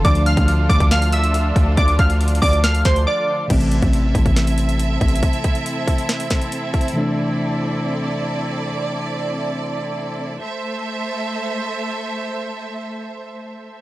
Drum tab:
CC |------------------------------------------------|------------------------------------------------|x-----------------------------------------------|------------------------------------------------|
HH |x--x--x--x--x-----x--x--x--x--x--x--x-----x-----|x--x--x--x--x-x-x-o--x--x--x--x--x--------------|x--x--x--x--x-----x--x--x--x--x--x--x-----x-x-x-|x--x--x--x--x-----x--x--x--x--x--x--x-----x-x-x-|
SD |------------------------o-----------------------|------------------------o-----o-----------------|------------------------o-----------------------|------------------------o-----o-----------------|
BD |o--------o--------o--o--------------------o-----|o-----o-----------o-----------o-----------------|o--------o--------o--o--------------------o-----|o-----o-----------o-----------o-----------o-----|

CC |------------------------------------------------|------------------------------------------------|------------------------------------------------|------------------------------------------------|
HH |------------------------------------------------|------------------------------------------------|------------------------------------------------|------------------------------------------------|
SD |------------------------------------------------|------------------------------------------------|------------------------------------------------|------------------------------------------------|
BD |------------------------------------------------|------------------------------------------------|------------------------------------------------|------------------------------------------------|